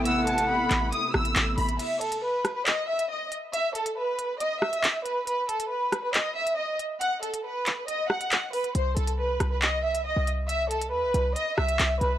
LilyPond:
<<
  \new Staff \with { instrumentName = "Flute" } { \time 4/4 \key c \lydian \tempo 4 = 138 fis''2 r2 | r1 | r1 | r1 |
r1 | r1 | r1 | }
  \new Staff \with { instrumentName = "Violin section" } { \time 4/4 \key c \lydian e'''8 a''8 b''4 dis'''8 e'''4 b''8 | e''8 a'8 b'8. b'16 dis''8 e''8 dis''8 r8 | e''8 a'8 b'4 dis''8 e''4 b'8 | b'8 a'8 b'8. b'16 dis''8 e''8 dis''8 r8 |
fis''8 a'8 b'4 dis''8 fis''4 b'8 | c''8 a'8 b'8. b'16 dis''8 e''8 dis''8 r8 | e''8 a'8 b'4 dis''8 e''4 b'8 | }
  \new Staff \with { instrumentName = "String section" } { \time 4/4 \key c \lydian <c a b e'>1 | r1 | r1 | r1 |
r1 | r1 | r1 | }
  \new Staff \with { instrumentName = "808-style bass" } { \clef bass \time 4/4 \key c \lydian a,,4. a,,8 r8 a,,8 a,,8 a,,8 | r1 | r1 | r1 |
r1 | c,8 c,4 c,4.~ c,16 c,8.~ | c,4 e,16 c,16 c,8 r8 c,8 c,8 c,8 | }
  \new DrumStaff \with { instrumentName = "Drums" } \drummode { \time 4/4 hh8 hh16 hh16 r8 <hc hh>8 hh8 ss16 hh16 <hc hh>8 <hh hho>16 hh16 | <cymc hh>8 hh16 hh16 r8 <hh ss>8 <hc hh>8. hh16 r8 hh8 | hh8 hh16 hh16 r8 hh8 hh8 ss16 hh16 <hc hh>8 hh8 | hh8 hh16 hh16 r8 <hh ss>8 <hc hh>8. hh16 r8 hh8 |
hh8 hh16 hh16 r8 <hc hh>8 hh8 ss16 hh16 <hc hh>8 <hh hho>16 hh16 | hh8 hh16 hh16 r8 <hh ss>8 <hc hh>8. hh16 r8 hh8 | hh8 hh16 hh16 r8 hh8 hh8 ss16 hh16 <hc hh>8 hh8 | }
>>